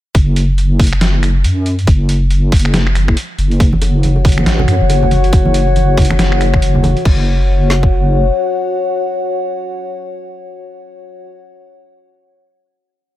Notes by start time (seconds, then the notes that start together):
0.15 F#1, kick, closed hi-hat
0.36 closed hi-hat
0.58 closed hi-hat
0.80 kick, open hi-hat
0.84 closed hi-hat
0.87 closed hi-hat
0.93 finger snap
1.01 snare, closed hi-hat
1.23 finger snap, closed hi-hat
1.44 F#2, closed hi-hat
1.66 closed hi-hat
1.79 closed hi-hat
1.87 F#1, kick, closed hi-hat
2.09 closed hi-hat
2.31 closed hi-hat
2.52 F#1, kick, open hi-hat
2.56 closed hi-hat
2.59 closed hi-hat
2.65 finger snap
2.74 snare, closed hi-hat
2.87 finger snap
2.95 finger snap, closed hi-hat
3.08 finger snap, kick
3.17 closed hi-hat
3.38 F#1, closed hi-hat
3.51 closed hi-hat
3.60 F#4 C#5 F#5, kick, closed hi-hat
3.73 high conga
3.82 closed hi-hat, high bongo
4.03 closed hi-hat, high conga
4.16 high bongo
4.25 kick, open hi-hat, low conga
4.29 closed hi-hat
4.32 closed hi-hat
4.38 finger snap, high conga
4.46 A1, snare, closed hi-hat
4.59 high bongo, low conga
4.68 F#2, finger snap, closed hi-hat
4.81 F#1, high conga
4.90 closed hi-hat, high bongo
5.03 low conga
5.11 closed hi-hat, high conga
5.24 closed hi-hat
5.33 F#1, kick, closed hi-hat, high bongo
5.45 high conga
5.54 closed hi-hat
5.67 high bongo
5.76 closed hi-hat, high conga
5.97 kick, open hi-hat, low conga
6.02 closed hi-hat
6.05 closed hi-hat
6.11 finger snap, high bongo, high conga
6.19 F#1, snare, closed hi-hat
6.32 finger snap
6.40 finger snap, closed hi-hat, high bongo
6.54 finger snap, kick, high conga
6.62 closed hi-hat
6.75 low conga
6.83 closed hi-hat, high bongo, high conga
6.97 closed hi-hat
7.05 F#1 F#4 C#5 F#5, kick, crash
7.70 snare
7.83 kick